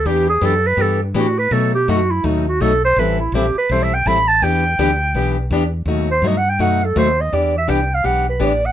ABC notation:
X:1
M:4/4
L:1/16
Q:"Swing" 1/4=165
K:Em
V:1 name="Clarinet"
G2 ^G2 A2 B2 A2 D2 F2 B2 | A2 G2 F2 E2 ^D2 F2 A2 c2 | B2 E2 G2 B2 (3c2 e2 g2 b2 a2 | g12 z4 |
z2 c2 (3^d2 f2 g2 f2 A2 c2 d2 | d2 e2 g2 =f2 ^f2 B2 d2 f2 |]
V:2 name="Steel-string acoustic guitar"
[E,B,DG]2 z2 [E,B,DG] z3 [E,B,DG]2 z2 [E,B,DG] z3 | [B,,F,A,^DF]2 z2 [B,,F,A,DF] z3 [B,,F,A,DF]2 z2 [B,,F,A,DF] z3 | [E,G,CEA]2 z2 [E,G,CEA] z3 [E,G,CEA]2 z2 [E,G,CEA] z3 | [E,B,DG]2 z2 [E,B,DG] z3 [E,B,DG]2 z2 [E,B,DG] z3 |
[B,,F,A,^DF]2 z2 [B,,F,A,DF] z3 [B,,F,A,DF]2 z2 [B,,F,A,DF] z3 | [E,B,DG]2 z2 [E,B,DG] z3 [E,B,DG]2 z2 [E,B,DG] z3 |]
V:3 name="Fretless electric bass" clef=bass
E,,4 F,,4 G,,4 A,,4 | B,,4 F,,4 ^D,,4 B,,,4 | A,,,4 ^A,,,2 z2 B,,,4 =A,,,4 | E,,4 D,,4 B,,,4 E,,4 |
^D,,4 G,,4 F,,4 D,,4 | E,,4 C,,4 B,,,4 A,,,4 |]